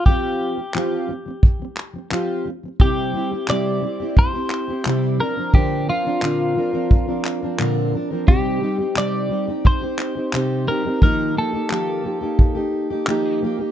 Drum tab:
CP |--x--xx-|--x--xx-|--x--xx-|--x--xx-|
BD |o---o---|o---o---|o---o---|o---o---|

CP |--x---x-|
BD |o---o---|